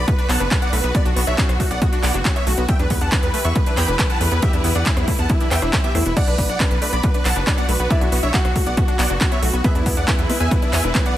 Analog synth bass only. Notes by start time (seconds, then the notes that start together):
0.29 B1
0.40 F#1
0.73 B1
0.84 B1
1.06 B1
1.16 B1
1.27 B1
1.49 B1
1.71 B1
2.03 B1
2.14 F#1
2.47 B1
2.58 B1
2.79 E2
2.90 E2
3.01 E2
3.23 E2
3.45 E2
3.77 E2
3.88 E1
4.21 E2
4.32 E2
4.53 E2
4.64 E2
4.75 E2
4.97 E2
5.19 E2
5.51 E2
5.62 E1
5.95 E2
6.06 E1
6.27 B1
6.38 B1
6.49 B1
6.71 B1
6.93 B1
7.25 B1
7.36 F#1
7.69 B1
7.79 B1
8.01 B1
8.12 B1
8.23 B1
8.45 B1
8.67 B1
8.99 B1
9.10 F#1
9.42 B1
9.53 B1
9.75 E2
9.86 E2
9.97 E2
10.19 E2
10.40 E2
10.73 E2
10.84 E1